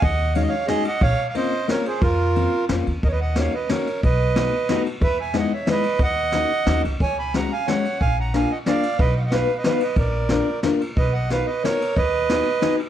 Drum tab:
RD |x-x-xx|x-x-xx|x-x-xx|x-x-xx|
SD |----o-|----o-|----o-|--o-o-|
BD |o-----|o-----|o-----|o-----|

RD |x-x-xx|x-x-xx|x-x-xx|x-x-xx|
SD |--o-o-|--o-o-|--o-o-|--o-o-|
BD |o-----|o-----|o-----|o-----|

RD |x-x-xx|x-x-xx|x-x-xx|x-x-xx|
SD |--o-o-|--o-o-|--o-o-|--o-o-|
BD |o-----|o-----|o-----|o-----|

RD |x-x-xx|
SD |--o-o-|
BD |o-----|